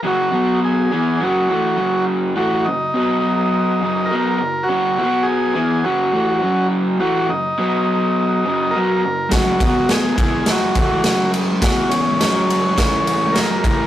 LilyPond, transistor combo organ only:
\new Staff \with { instrumentName = "Transistor combo organ" } { \time 4/4 \key b \lydian \tempo 4 = 104 fis'4 gis'4 fis'4. r8 | fis'8 dis'2~ dis'8 ais'4 | fis'4 gis'4 fis'4. r8 | fis'8 dis'2~ dis'8 ais'4 |
fis'4 gis'4 fis'4. r8 | fis'8 cis'2~ cis'8 ais'4 | }